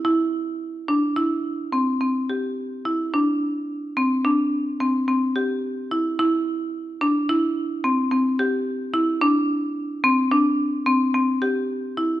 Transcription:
X:1
M:11/8
L:1/8
Q:1/4=108
K:C
V:1 name="Marimba"
E2 z D E2 C C G2 E | D2 z C D2 C C G2 E | E2 z D E2 C C G2 E | D2 z C D2 C C G2 E |]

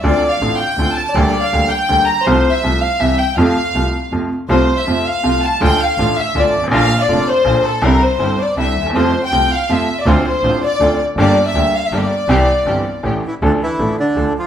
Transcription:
X:1
M:3/4
L:1/16
Q:1/4=162
K:F
V:1 name="Violin section"
d3 f3 g4 a2 | d3 f3 g4 b2 | c3 e3 f2 e2 g2 | f8 z4 |
c3 e3 f4 a2 | g2 f4 e2 d3 z | f3 d3 c4 A2 | B2 c4 d2 e3 z |
c3 g3 f2 e3 d | c2 c4 d4 z2 | d3 e3 f e d4- | d8 z4 |
[K:Dm] z12 |]
V:2 name="String section"
z12 | z12 | z12 | z12 |
[A,CF]2 z2 [A,CF]2 z2 [A,CF]2 z2 | [A,DF]2 z2 [A,DF]2 z2 [A,DF]2 z2 | [B,DF]2 z2 [B,DF]2 z2 [B,DF]2 z2 | [CDE]2 z2 [CDE]2 z2 [CDE]2 z2 |
[A,CF]2 z2 [A,CF]2 z2 [A,CF]2 z2 | [CDF]2 z2 [CDF]2 z2 [CDF]2 z2 | [B,DG]2 z2 [B,DG]2 z2 [B,DG]2 z2 | [CEG]2 z2 [CEG]2 z2 [A,^CG]2 z2 |
[K:Dm] z12 |]
V:3 name="Bandoneon"
z12 | z12 | z12 | z12 |
z12 | z12 | z12 | z12 |
z12 | z12 | z12 | z8 z2 [E,E]2 |
[K:Dm] [D,D]2 [E,E]4 [D,D]4 [F,F]2 |]
V:4 name="Upright piano" clef=bass
[D,,D,A,CF]2 z2 [A,,,A,,D,A,CF]2 z2 [D,,D,A,CF]2 z2 | [D,,D,G,B,G]2 z2 [D,,D,G,B,G]2 z2 [D,,D,G,B,G]2 z2 | [C,,C,F,A,F]2 z2 [C,,C,F,A,F]2 z2 [C,,C,E,G,E]2 z2 | [F,,C,F,A,F]2 z2 [C,,C,F,A,F]2 z2 [F,,C,F,A,F]2 z2 |
[C,,C,F,A,F]2 z2 [F,,C,F,A,F]2 z2 [C,,C,F,A,F]2 z2 | [D,,D,F,A,F]2 z2 [A,,,A,,D,F,A,F]2 z2 [D,,D,F,A,F]2 z/2 G,,,/2 _A,,,/2 =A,,,/2 | [B,,,B,,D,F,B,F]2 z2 [F,,,F,,D,F,B,F]2 z2 [B,,,B,,D,F,B,F]2 z2 | [C,,C,D,G,CE]2 z2 [G,,,G,,D,G,CE]2 z2 [C,,C,D,G,CE]2 z/2 D,,/2 _E,,/2 =E,,/2 |
[F,,C,F,A,F]2 z2 [C,,C,F,A,F]2 z2 [F,,C,F,A,F]2 z2 | [D,,D,A,CF]2 z2 [A,,,A,,D,A,CF]2 z2 [D,,D,A,CF]2 z2 | [G,,,G,,D,G,B,G]2 z2 [D,,D,G,B,G]2 z2 [G,,,G,,D,G,B,G]2 z2 | [C,,C,E,G,CG]2 z2 [G,,,G,,E,G,CG]2 z2 [A,,,A,,E,A,^CG]2 z2 |
[K:Dm] [D,,D,F,A,DA]2 z2 [A,,,A,,F,A,DA]2 z2 [D,,D,F,A,DA]2 z2 |]
V:5 name="Double bass" clef=bass
D,,2 z2 A,,,2 z2 D,,2 z2 | D,,2 z2 D,,2 z2 D,,2 z2 | C,,2 z2 C,,2 z2 C,,2 z2 | F,,2 z2 C,,2 z2 F,,2 z2 |
C,,2 z2 F,,2 z2 C,,2 z2 | D,,2 z2 A,,,2 z2 D,,2 _A,,,2 | B,,,2 z2 F,,,2 z2 B,,,2 z2 | C,,2 z2 G,,,2 z2 C,,2 _E,,2 |
F,,2 z2 C,,2 z2 F,,2 z2 | D,,2 z2 A,,,2 z2 D,,2 z2 | G,,,2 z2 D,,2 z2 G,,,2 z2 | C,,2 z2 G,,,2 z2 A,,,2 z2 |
[K:Dm] D,,2 z2 A,,,2 z2 D,,2 z2 |]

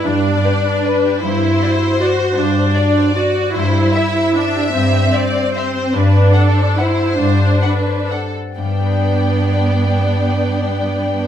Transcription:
X:1
M:3/4
L:1/8
Q:1/4=146
K:G
V:1 name="Violin section"
z2 B2 B2 | z2 d2 d2 | z2 d2 d2 | z2 e2 e2 |
z2 e2 e2 | z2 f2 f2 | z2 f2 f2 | g6- |
g6 |]
V:2 name="Violin section"
d4 B2 | c6- | c2 d4 | c2 e2 e2- |
e2 d2 c2 | B2 A2 c2- | c2 B2 A z | [Dd]6- |
[Dd]6 |]
V:3 name="Harp"
[G,,B,DGBd] B, G B d G | G,, C F c d F | G,, C F c d F | G,, C G c e G |
G,, C G c e G | G,, C A c f A | G,, C A c f A | [G,,G,DGBg]6- |
[G,,G,DGBg]6 |]
V:4 name="Viola section"
D6 | E4 F2 | D4 F2 | E4 D2 |
C6 | D4 E2 | D4 z2 | B,6- |
B,6 |]
V:5 name="Cello section" clef=bass
G,,2 z4 | G,,2 z4 | G,,2 z4 | G,,2 z4 |
G,,2 z4 | G,,2 z4 | G,,2 z4 | G,,6- |
G,,6 |]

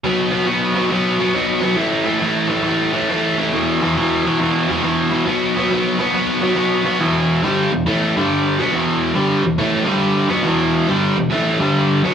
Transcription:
X:1
M:4/4
L:1/8
Q:"Swing" 1/4=138
K:Bphr
V:1 name="Overdriven electric guitar" clef=bass
[B,,F,B,] [B,,F,B,] [B,,F,B,] [B,,F,B,] [B,,F,B,] [B,,F,B,] [B,,F,B,] [B,,F,B,] | [A,,E,A,] [A,,E,A,] [A,,E,A,] [A,,E,A,] [A,,E,A,] [A,,E,A,] [A,,E,A,] [A,,E,A,] | [E,,B,,E,] [E,,B,,E,] [E,,B,,E,] [E,,B,,E,] [E,,B,,E,] [E,,B,,E,] [E,,B,,E,] [E,,B,,E,] | [B,,F,B,] [B,,F,B,] [B,,F,B,] [B,,F,B,] [B,,F,B,] [B,,F,B,] [B,,F,B,] [B,,F,B,] |
[K:Em] [E,,B,,E,]2 [G,,D,G,] [E,,B,,] [A,,E,A,] [G,,D,G,]2 [B,,F,B,] | [E,,B,,E,]2 [G,,D,G,] [E,,B,,] [A,,E,A,] [G,,D,G,]2 [B,,F,B,] | [E,,B,,E,]2 [G,,D,G,] [E,,B,,] [A,,E,A,] [G,,D,G,]2 [B,,F,B,] |]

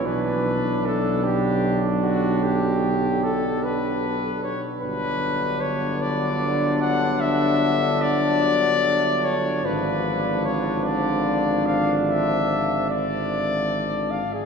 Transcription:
X:1
M:12/8
L:1/16
Q:3/8=50
K:Bm
V:1 name="Cornet"
B4 A2 G4 F2 G4 A2 B4 c z | [K:Glyd] B4 c2 d4 f2 e4 d6 c2 | B4 c2 d4 ^e2 =e4 d6 ^e ^G |]
V:2 name="Flugelhorn"
D16- D6 z2 | [K:Glyd] D24 | D16- D6 z2 |]
V:3 name="Euphonium" clef=bass
F,16- F,6 z2 | [K:Glyd] F,24 | ^E,16- E,6 z2 |]
V:4 name="Trombone" clef=bass
E,6 D,16 z2 | [K:Glyd] D,24 | D,16- D,6 z2 |]
V:5 name="Tuba" clef=bass
B,,,16- B,,,6 z2 | [K:Glyd] G,,,24 | ^G,,,16- G,,,6 z2 |]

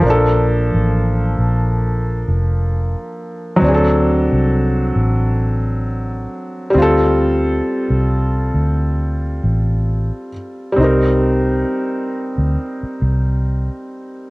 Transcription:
X:1
M:4/4
L:1/16
Q:"Swing 16ths" 1/4=67
K:Cdor
V:1 name="Felt piano"
[F,B,DA]16 | [^F,CD_A=A]12- [F,CD_A=A]2 [G,C=FA]2- | [G,CFA]12- [G,CFA]2 z2 | [G,CEB]16 |]
V:2 name="Fingered electric bass" clef=bass
B,,,3 A,,,3 B,,,4 F,,,3 z3 | D,,3 C,,3 A,,,6 z2 D,,2- | D,,2 z C,,3 D,,4 A,,,3 z3 | C,,4 z3 D,, z2 C,,3 z3 |]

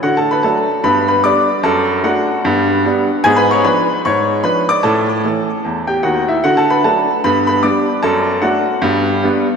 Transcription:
X:1
M:4/4
L:1/8
Q:"Swing" 1/4=150
K:D
V:1 name="Grand piano"
(3[Ff] [Aa] [Bb] [Aa]2 [Bb] [Bb] [dd']2 | [Aa]2 [Ff]4- [Ff] z | (3[^G^g] [Bb] [cc'] [Bb]2 [cc']2 [Bb] [dd'] | [Aa]4- [Aa] [Gg] [Ff] [Ee] |
(3[Ff] [Aa] [Bb] [Aa]2 [Bb] [Bb] [dd']2 | [Aa]2 [Ff]4- [Ff] z |]
V:2 name="Grand piano"
D,2 [F,A,D]2 [G,,B,]2 [G,B,D]2 | F,,2 [A,D]2 [G,,B,]2 [G,B,D]2 | [^G,,B,]2 [^E,D]2 G,,2 [E,D]2 | [A,,C]2 [E,A,C]2 E,,2 [_E,,_E,]2 |
D,2 [F,A,D]2 [G,,B,]2 [G,B,D]2 | F,,2 [A,D]2 [G,,B,]2 [G,B,D]2 |]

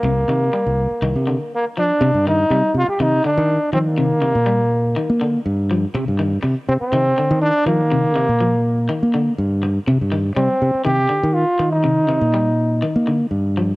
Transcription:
X:1
M:4/4
L:1/16
Q:"Swing 16ths" 1/4=122
K:Cm
V:1 name="Trombone"
B,12 B,2 D2- | D2 E4 F G E2 D4 C B,- | B,8- B,3 z4 z | z6 C C4- C D2 B,2- |
B,8- B,2 z6 | z4 C4 G4 F3 E- | E8- E3 z4 z |]
V:2 name="Clean electric guitar" clef=bass
C,2 E,2 G,2 z2 E,2 D,2 z2 F,2 | C,2 E,2 G,2 z2 E,2 D,2 z2 F,2 | C,2 E,2 G,2 z2 E,2 D,2 z2 F,2 | C,2 E,2 z4 E,2 D,2 z2 F,2 |
C,2 E,2 F,2 z2 E,2 D,2 z4 | C,2 E,2 G,2 z2 E,2 D,2 z2 E,2 | C,2 E,2 G,2 z2 E,2 D,2 z2 F,2 |]
V:3 name="Fingered electric bass" clef=bass
C,,2 C,2 z C,,2 z C,, C,2 z4 z | C, G,,3 C, z C, z C,2 z E,2 z E,2- | E,2 C, B,,6 B,3 G,,4 | C, G,,3 C, z C, z C,2 z E,2 z E,2- |
E,2 C, B,,6 B,3 G,,4 | C, G,,3 C, z C, z C,2 z E,2 z E,2- | E,2 C, B,,6 B,3 G,,4 |]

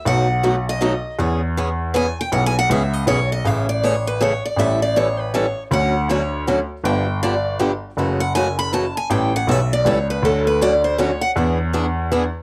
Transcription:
X:1
M:3/4
L:1/16
Q:"Swing" 1/4=159
K:E
V:1 name="Steel-string acoustic guitar"
f6 d6 | z8 g2 =g2 | (3f2 g2 f2 e2 d2 c2 d2 | [K:A] e2 d2 c2 B2 c2 d2 |
e2 d2 c2 B2 c3 z | f4 c4 z4 | =g4 d4 z4 | z2 f2 g2 b2 a2 g2 |
=g2 f2 e2 d2 c2 B2 | A2 B2 d2 =c2 ^c2 f2 | z12 |]
V:2 name="Steel-string acoustic guitar"
[B,,F,A,DF]2 z2 [B,,F,A,DF] z3 [B,,F,A,DF] z3 | [E,B,CG]2 z2 [E,B,CG] z3 [E,B,CG] z3 | [E,B,CG]2 z2 [E,B,CG] z3 [E,B,CG] z3 | [K:A] [C,E,A,CG]2 z2 [C,E,A,CG] z3 [C,E,A,CG] z3 |
[E,=G,CEA]2 z2 [E,G,CEA] z3 [E,G,CEA] z3 | [D,F,A,CF]2 z2 [D,F,A,CF] z3 [D,F,A,CF] z3 | [D,=F,B,D=G]2 z2 [D,F,B,DG] z3 [D,F,B,DG] z3 | [C,E,A,CF]2 z2 [C,E,A,CF] z3 [C,E,A,CF] z3 |
[E,=G,CEA]2 z2 [E,G,CEA] z3 [E,G,CEA] z3 | [D,F,A,CF]2 z2 [D,F,A,CF] z3 [D,F,A,CF] z3 | [E,B,DG]2 z2 [E,B,DG] z3 [E,B,DG] z3 |]
V:3 name="Grand piano" clef=bass
B,,,12 | E,,12 | B,,,4 C,,4 B,,,4 | [K:A] A,,,12 |
A,,,12 | D,,12 | =G,,,12 | F,,,12 |
A,,,4 B,,,4 C,,4 | D,,12 | E,,12 |]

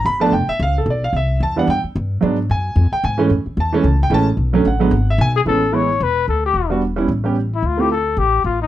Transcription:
X:1
M:4/4
L:1/8
Q:"Swing" 1/4=222
K:A
V:1 name="Trumpet"
z8 | z8 | z8 | z8 |
z6 z G | A2 c2 B2 A =G- | =G z6 E | =F =G A2 G2 F ^D |]
V:2 name="Grand piano"
b a =g e =f A d f | e2 a f =g z3 | z2 g3 =g ^g z | z2 a3 =g a z |
z2 f3 e g z | z8 | z8 | z8 |]
V:3 name="Grand piano"
z [=F,A,B,D] z6 | z3 [E,=G,B,D] z4 | [F,G,B,D] z6 [E,G,A,C] | z3 [E,G,A,C] z2 [E,G,A,C] z |
z [D,F,A,C] z [D,F,G,B,] z4 | [E,G,B,C] z [E,G,B,E] z4 z | z [=G,B,DF] z [G,B,CE] z [G,B,C=G] z2 | z [A,=CE=F] z6 |]
V:4 name="Upright bass" clef=bass
=G,,,2 =F,,, z C,,2 B,,,2 | =C,,2 E,,2 F,, z =G,,2 | G,,2 F,,2 ^E,, z G,,2 | F,, z E,,2 C,,2 A,,,2 |
B,,,2 A,,,2 G,,,2 B,,,2 | A,,,4 E,,,2 D,,2 | E,,,4 A,,,4 | D,,4 A,,,2 A,,,2 |]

